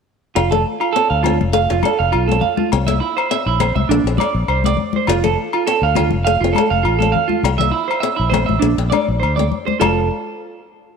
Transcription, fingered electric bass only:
0.37 F1
1.10 D2
1.41 F1
1.71 F1
2.00 F1
2.14 B1
2.73 C2
3.46 A#1
3.76 C2
3.89 A#1
4.04 A#1
4.35 A#1
4.48 C2
5.08 F1
5.82 D2
6.11 F1
6.41 F1
6.71 F1
6.85 A1
7.43 C2
8.19 A#1
8.49 A1
8.62 A#1
8.78 A#1
9.08 A#1
9.22 D2
9.81 F1

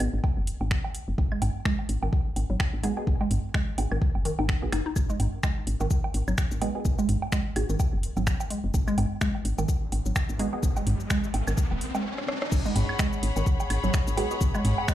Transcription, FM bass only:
0.00 G#1
0.14 G#1
0.37 F#1
0.61 G#1
1.08 F#1
1.18 G#1
1.42 G#1
1.89 G#1
2.03 G#1
2.36 G#1
2.50 G#1
2.73 G#1
3.07 G#1
3.31 G#1
3.78 G#1
3.91 G#1
4.15 F#1
4.39 G#1
4.62 B1
4.73 F#1
4.96 G#1
5.20 G#1
5.67 G#1
5.81 G#1
6.14 G#1
6.28 G#1
6.51 G#1
6.85 G#1
7.09 G#1
7.56 G#1
7.70 G#1
7.93 F#1
8.17 G#1
8.64 F#1
8.74 G#1
8.98 G#1
9.45 G#1
9.58 G#1
9.92 G#1
10.06 G#1
10.29 G#1
10.63 G#1
10.87 G#1
11.34 G#1
11.47 G#1
11.71 D#1
12.52 G#1
12.76 G#1
13.23 G#1
13.36 G#1
13.70 G#1
13.84 G#1
14.07 G#1
14.41 G#1
14.65 G#1

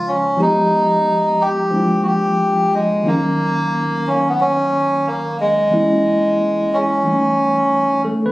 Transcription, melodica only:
0.08 C#4
0.41 D#4
1.41 G4
2.03 F#4
2.07 G4
2.74 G#3
3.07 A#3
4.07 C#4
4.29 B3
4.41 C#4
5.07 A#3
5.40 G#3
6.74 C#4

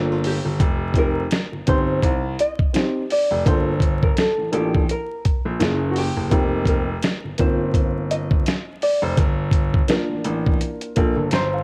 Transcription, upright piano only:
Already playing: A#3 D4 F4 A4
0.95 C4 D#4 G4 A#4
1.66 C4 D#4 G4 B4
1.75 C5
2.73 C4 D#4 G4 C5
3.45 A#3 D4 F4 A4
4.51 A#3 D4 F4 A4
5.59 A#3 C#4 E4 G#4
6.30 A#3 C4 D#4 G4
7.38 A#3 C4 D#4 F4
9.88 A#3 D4 F4 A#4
10.95 A#3 D4 F4 A4
11.32 A#5
11.54 F5

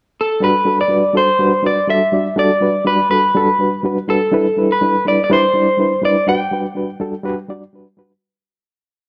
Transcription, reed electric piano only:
0.40 G3 D4 F#4 B4
0.65 G3 D4 F#4 A4
0.89 G3 D4 F#4 B4
1.13 G3 D4 F#4 A4
1.39 G3 D4 F#4 B4
1.63 G3 D4 F#4 B4
1.87 G3 D4 F#4 A4
2.12 G3 D4 F#4 D5
2.36 G3 D4 F#4 A4
2.61 G3 D4 F#4 B4
2.85 G3 D4 F#4 D5
3.10 G3 D4 F#4 A4
3.35 G3 D4 F#4 A4
3.59 G3 D4 F#4 B4
3.83 G3 D4 F#4 B4
4.08 G3 D4 F#4 B4
4.32 G3 D4 E4 B4
4.57 G3 D4 E4 B4
4.81 G3 D4 E4 B4
5.05 G3 D4 E4 B4
5.30 G3 D4 E4 B4
5.54 G3 D4 E4 D5
5.77 G3 D4 E4 B4
6.02 G3 D4 E4 B4
6.27 G3 D4 F#4 B4
6.51 G3 D4 F#4 B4
6.75 G3 D4 F#4 B4
7.00 G3 D4 F#4 A4
7.23 G3 D4 F#4 B4
7.49 G3 D4 F#4 D5
7.73 G3 D4 F#4 B4
7.97 G3 D4 F#4 B4

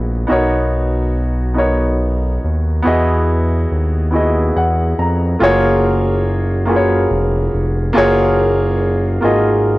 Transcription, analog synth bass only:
Already playing: A#1
0.31 B1
2.44 D#2
2.86 E2
3.72 D#2
4.56 E2
4.99 F2
5.42 F#1
7.11 F1
7.54 F1
7.96 F#1
9.24 G#1

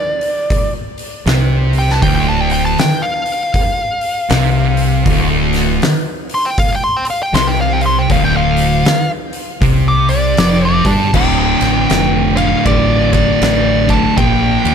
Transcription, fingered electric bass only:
1.26 C2
2.02 D1
4.30 C2
5.06 D1
7.33 C2
8.10 D1
9.61 C2
10.38 F1
10.85 G1
11.14 D1
11.61 A1
11.90 F1
12.66 A1
13.41 A1
14.18 A#1
14.65 D#2

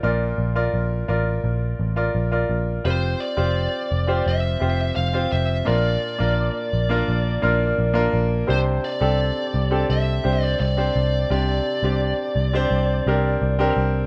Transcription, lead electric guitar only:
2.85 C5
3.20 D5
4.28 E5
4.96 F5
5.32 E5
5.68 D5
8.50 C5
8.85 D5
9.90 E5
10.44 D5
10.60 D5
11.31 D5

